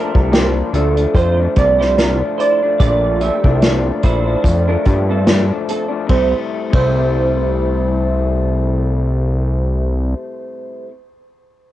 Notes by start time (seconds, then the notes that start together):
Already playing: A#2 F3 A3 D4 A#4
0.13 C2 F3 A3 D4, kick
0.32 A#2 F3 D4 G4, snare, closed hi-hat
0.73 D2 A#2 F3 A3 D4 A4, closed hi-hat
0.96 F3 A3 D4, closed hi-hat
1.14 F2 F4 C5, kick, closed hi-hat
1.37 F3 A3 D4
1.56 C2 A#2 F3 A3 D4 D5, kick, closed hi-hat
1.79 F3 A3 D4 E4 C5, snare
1.97 A#2 F3 A3 D4 A#4, snare, closed hi-hat
2.20 F3 A3 D4
2.38 E4 C5 D5, closed hi-hat
2.62 F3 A3 D4
2.80 A#1 A#2 F3 A3 D4 F4 D5, kick, closed hi-hat
3.21 A#2 F3 A3 D4 G4 E5, closed hi-hat
3.43 C2 F3 A3 D4, kick
3.62 A#2 F3 A3 D4, snare, closed hi-hat
4.03 A#1 A#2 F3 A3 D4 E4 C5, kick, closed hi-hat
4.26 F3 A3 D4
4.44 F2, kick, closed hi-hat
4.68 F3 A3 D4 A#4
4.85 G2 A#2 F3 A3 D4, kick, closed hi-hat
5.08 F3 A3 C4 D4 A4
5.26 A#2 F3 A3 D4, snare, closed hi-hat
5.48 F3 A3 D4
5.69 C4 A4, closed hi-hat
5.88 F3 A3 D4
6.07 C2 C3 G3 C4 C5, kick, ride
6.12 A3 E4
6.70 C2 C3 G3 C4, kick, ride
6.75 A3 E4 C5